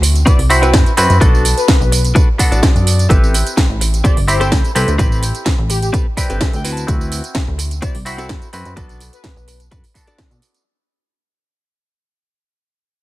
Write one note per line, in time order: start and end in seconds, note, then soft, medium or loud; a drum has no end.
0.00 0.24 D2 loud
0.00 0.47 C4 medium
0.00 0.47 E4 medium
0.00 0.48 F#4 medium
0.00 0.48 B5 medium
0.00 muted clean electric guitar stroke soft
0.00 open hi-hat loud
0.00 tambourine medium
0.16 closed hi-hat medium
0.16 tambourine soft
0.26 0.39 C4 medium
0.26 0.39 E4 medium
0.26 0.39 F#4 medium
0.26 0.39 B4 loud
0.26 0.42 D5 medium
0.26 kick loud
0.26 closed hi-hat medium
0.26 tambourine soft
0.39 0.75 C2 medium
0.39 open hi-hat medium
0.50 0.94 C4 loud
0.50 0.95 E4 medium
0.50 0.95 F#4 medium
0.50 0.66 C5 medium
0.50 0.95 B5 loud
0.50 muted clean electric guitar stroke soft
0.50 open hi-hat loud
0.50 tambourine medium
0.62 0.92 C4 medium
0.62 0.92 E4 medium
0.62 0.92 F#4 medium
0.62 0.92 B4 loud
0.62 closed hi-hat medium
0.62 tambourine soft
0.74 0.84 F#2 medium
0.74 kick loud
0.74 snare loud
0.74 closed hi-hat medium
0.74 tambourine soft
0.86 closed hi-hat soft
0.86 tambourine soft
0.97 1.08 F#2 loud
0.97 1.18 C4 medium
0.97 1.18 E4 medium
0.97 1.18 F#4 medium
0.97 1.19 B4 loud
0.97 open hi-hat loud
0.97 tambourine medium
1.10 1.19 F#2 medium
1.10 closed hi-hat medium
1.10 tambourine soft
1.20 1.54 B1 loud
1.20 2.36 B3 medium
1.20 2.36 D4 medium
1.20 1.45 D4 loud
1.20 2.37 F#4 medium
1.20 1.45 F#4 medium
1.20 1.45 A4 loud
1.20 2.37 A4 medium
1.20 1.45 B4 loud
1.20 kick loud
1.20 closed hi-hat medium
1.20 tambourine soft
1.35 tambourine soft
1.45 open hi-hat loud
1.45 tambourine medium
1.57 2.04 B4 medium
1.57 closed hi-hat medium
1.57 tambourine soft
1.68 muted clean electric guitar stroke medium
1.68 kick loud
1.68 snare loud
1.68 closed hi-hat medium
1.68 tambourine soft
1.80 2.13 B1 loud
1.80 muted clean electric guitar stroke soft
1.80 tambourine soft
1.92 muted clean electric guitar stroke soft
1.92 open hi-hat loud
1.92 tambourine medium
2.05 closed hi-hat soft
2.05 tambourine soft
2.15 2.28 D4 medium
2.15 2.28 F#4 medium
2.15 2.28 A4 medium
2.15 2.28 B4 medium
2.15 kick loud
2.15 closed hi-hat medium
2.15 tambourine soft
2.38 3.07 B3 medium
2.38 3.07 D4 medium
2.38 3.07 F#4 medium
2.38 3.08 A4 medium
2.38 2.61 F#5 medium
2.38 muted clean electric guitar stroke soft
2.38 kick medium
2.38 open hi-hat loud
2.38 tambourine medium
2.51 2.61 A1 medium
2.51 2.81 D4 medium
2.51 2.81 F#4 medium
2.51 2.81 A4 medium
2.51 2.62 D5 loud
2.51 closed hi-hat medium
2.51 tambourine soft
2.63 kick loud
2.63 snare loud
2.63 closed hi-hat medium
2.63 tambourine soft
2.75 3.07 F#2 medium
2.75 closed hi-hat soft
2.75 tambourine soft
2.87 open hi-hat loud
2.87 tambourine medium
2.99 closed hi-hat soft
2.99 tambourine soft
3.09 3.43 A1 loud
3.09 4.25 C4 medium
3.09 3.34 C4 loud
3.09 4.25 E4 medium
3.09 4.25 G4 medium
3.09 3.34 G4 medium
3.09 3.34 A4 loud
3.09 3.34 B4 loud
3.09 4.26 B4 medium
3.09 kick loud
3.09 closed hi-hat medium
3.09 tambourine soft
3.24 tambourine soft
3.34 open hi-hat loud
3.34 tambourine medium
3.47 closed hi-hat medium
3.47 tambourine soft
3.57 muted clean electric guitar stroke medium
3.57 kick loud
3.57 snare loud
3.57 closed hi-hat medium
3.57 tambourine soft
3.69 4.02 A1 loud
3.69 muted clean electric guitar stroke soft
3.81 muted clean electric guitar stroke soft
3.81 open hi-hat loud
3.81 tambourine medium
3.94 closed hi-hat medium
3.94 tambourine soft
4.04 4.17 C4 loud
4.04 4.17 G4 medium
4.04 4.17 A4 medium
4.04 4.17 C5 medium
4.04 4.20 D5 medium
4.04 kick loud
4.04 closed hi-hat medium
4.04 tambourine soft
4.17 4.53 G1 medium
4.17 open hi-hat medium
4.28 4.72 C4 medium
4.28 4.72 E4 medium
4.28 4.73 G4 medium
4.28 4.44 C5 medium
4.28 4.73 B5 loud
4.28 muted clean electric guitar stroke soft
4.28 open hi-hat loud
4.28 tambourine medium
4.40 4.70 C4 medium
4.40 4.70 G4 medium
4.40 4.70 A4 medium
4.40 4.70 C5 loud
4.40 closed hi-hat medium
4.40 tambourine soft
4.52 4.62 D2 medium
4.52 kick loud
4.52 snare loud
4.52 closed hi-hat medium
4.52 tambourine soft
4.65 closed hi-hat soft
4.65 tambourine soft
4.75 4.86 C2 medium
4.75 4.96 C4 medium
4.75 4.96 E4 medium
4.75 4.96 G4 medium
4.75 4.91 A4 medium
4.75 4.97 B4 loud
4.75 open hi-hat loud
4.75 tambourine medium
4.88 4.97 D2 medium
4.88 closed hi-hat medium
4.88 tambourine soft
4.98 5.32 A1 loud
4.98 6.14 C4 medium
4.98 5.22 C4 loud
4.98 6.14 E4 medium
4.98 5.23 G4 loud
4.98 6.15 G4 medium
4.98 5.23 A4 loud
4.98 5.23 B4 loud
4.98 6.15 B5 medium
4.98 kick loud
4.98 closed hi-hat medium
4.98 tambourine soft
5.12 tambourine soft
5.23 open hi-hat loud
5.23 tambourine medium
5.35 closed hi-hat medium
5.35 tambourine soft
5.46 muted clean electric guitar stroke medium
5.46 kick loud
5.46 snare loud
5.46 closed hi-hat medium
5.46 tambourine soft
5.58 5.91 A1 loud
5.58 muted clean electric guitar stroke soft
5.70 5.78 G4 medium
5.70 muted clean electric guitar stroke soft
5.70 open hi-hat loud
5.70 tambourine medium
5.82 5.89 G4 medium
5.82 closed hi-hat medium
5.82 tambourine soft
5.93 6.06 C4 loud
5.93 6.06 G4 medium
5.93 6.06 A4 medium
5.93 6.06 B4 loud
5.93 kick loud
5.93 closed hi-hat medium
5.93 tambourine soft
6.17 6.63 C4 medium
6.17 6.63 E4 medium
6.17 6.63 G4 medium
6.17 6.63 B4 medium
6.17 6.39 D5 medium
6.17 muted clean electric guitar stroke soft
6.17 kick medium
6.17 open hi-hat loud
6.17 tambourine medium
6.30 6.39 G1 medium
6.30 6.59 C4 medium
6.30 6.59 G4 medium
6.30 6.59 A4 medium
6.30 6.59 B4 loud
6.30 closed hi-hat medium
6.30 tambourine soft
6.41 6.55 E5 medium
6.41 kick loud
6.41 snare loud
6.41 closed hi-hat medium
6.41 tambourine soft
6.53 6.85 D2 medium
6.53 6.71 G5 medium
6.53 closed hi-hat soft
6.53 tambourine soft
6.64 7.21 C4 medium
6.64 7.21 E4 medium
6.64 7.21 F#4 medium
6.64 7.22 B4 loud
6.64 open hi-hat loud
6.64 tambourine medium
6.73 6.87 A5 medium
6.77 closed hi-hat medium
6.77 tambourine soft
6.87 7.21 D2 loud
6.87 8.03 C4 medium
6.87 8.03 E4 medium
6.87 8.03 F#4 medium
6.87 8.04 B5 medium
6.87 kick loud
6.87 closed hi-hat medium
6.87 tambourine soft
7.01 tambourine soft
7.12 open hi-hat loud
7.12 tambourine medium
7.24 closed hi-hat medium
7.24 tambourine soft
7.35 muted clean electric guitar stroke medium
7.35 kick loud
7.35 snare loud
7.35 closed hi-hat medium
7.35 tambourine soft
7.47 7.80 D2 loud
7.47 muted clean electric guitar stroke soft
7.58 muted clean electric guitar stroke soft
7.58 open hi-hat loud
7.58 tambourine medium
7.71 closed hi-hat medium
7.71 tambourine soft
7.82 7.95 C4 loud
7.82 7.95 E4 medium
7.82 7.95 F#4 medium
7.82 7.95 C5 medium
7.82 7.99 D5 medium
7.82 kick loud
7.82 closed hi-hat medium
7.82 tambourine soft
7.95 8.31 C2 medium
7.95 open hi-hat medium
8.05 8.50 C4 medium
8.05 8.50 E4 medium
8.05 8.51 F#4 medium
8.05 8.22 C5 loud
8.05 8.51 B5 loud
8.05 muted clean electric guitar stroke soft
8.05 open hi-hat loud
8.05 tambourine medium
8.18 8.48 C4 medium
8.18 8.48 E4 medium
8.18 8.48 F#4 medium
8.18 8.48 A4 medium
8.18 closed hi-hat medium
8.18 tambourine soft
8.29 8.40 F#2 medium
8.29 kick loud
8.29 snare loud
8.29 closed hi-hat medium
8.29 tambourine soft
8.42 closed hi-hat soft
8.42 tambourine soft
8.53 8.64 F#2 loud
8.53 8.74 C4 medium
8.53 8.74 E4 medium
8.53 8.74 F#4 medium
8.53 8.74 B4 loud
8.53 open hi-hat loud
8.53 tambourine medium
8.65 8.75 F#2 medium
8.65 closed hi-hat medium
8.65 tambourine soft
8.76 9.10 B1 loud
8.76 9.92 B3 medium
8.76 9.01 D4 loud
8.76 9.92 D4 medium
8.76 9.01 F#4 loud
8.76 9.92 F#4 medium
8.76 9.01 A4 loud
8.76 9.93 A4 medium
8.76 9.01 B4 loud
8.76 kick loud
8.76 closed hi-hat medium
8.76 tambourine soft
8.89 closed hi-hat soft
8.89 tambourine soft
9.00 open hi-hat loud
9.00 tambourine medium
9.13 9.60 B4 medium
9.13 closed hi-hat medium
9.13 tambourine soft
9.24 muted clean electric guitar stroke medium
9.24 kick loud
9.24 snare loud
9.24 closed hi-hat medium
9.24 tambourine soft
9.36 9.69 B1 loud
9.36 muted clean electric guitar stroke soft
9.36 tambourine soft
9.48 muted clean electric guitar stroke soft
9.48 open hi-hat loud
9.48 tambourine medium
9.60 closed hi-hat medium
9.60 tambourine soft
9.71 9.82 F#2 medium
9.71 9.84 D4 medium
9.71 9.84 F#4 medium
9.71 9.84 A4 medium
9.71 9.84 B4 loud
9.71 kick loud
9.71 closed hi-hat medium
9.71 tambourine soft
9.84 open hi-hat medium
9.84 tambourine soft
9.94 10.63 B3 medium
9.94 10.63 D4 medium
9.94 10.63 F#4 medium
9.94 10.64 A4 medium
9.94 muted clean electric guitar stroke soft
9.94 kick medium
9.94 open hi-hat loud
9.94 tambourine medium
10.07 10.37 D4 medium
10.07 10.37 F#4 medium
10.07 10.37 A4 medium
10.07 10.37 D5 loud
10.07 closed hi-hat medium
10.07 tambourine soft
10.18 kick loud
10.18 snare loud
10.18 closed hi-hat medium
10.18 tambourine soft
10.31 10.40 B2 loud
10.31 closed hi-hat soft
10.31 tambourine soft
10.42 open hi-hat loud
10.42 tambourine medium
10.54 closed hi-hat medium
10.54 tambourine soft